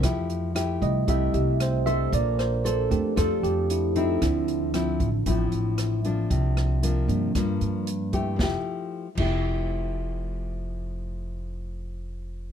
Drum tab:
CC |--------|--------|--------|--------|
HH |xxxxxxxx|xxxxxxxx|xxxxxxxx|xxxxxxxx|
SD |r-r---r-|-r--r---|r-r---r-|-r--r---|
BD |o--oo---|o--oo---|o--oo---|o---o--o|

CC |---x----|--------|
HH |--------|--------|
SD |o-------|--------|
BD |o--o----|--------|